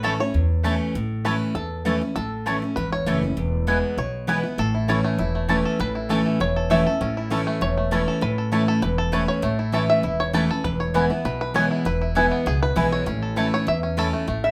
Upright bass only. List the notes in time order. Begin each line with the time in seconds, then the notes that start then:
Already playing: A1
0.34 E2
0.95 A1
1.55 E2
2.16 A1
2.77 G#1
3.07 F#1
3.37 E1
3.97 B1
4.58 A1
5.19 E1
5.80 A1
6.40 E1
7.00 A1
7.61 E1
8.22 A1
8.83 E1
9.43 A1
10.04 E1
10.64 E1
11.25 B1
11.86 E1
12.46 C#2
12.76 B1
13.07 A1
13.67 E2
14.28 A1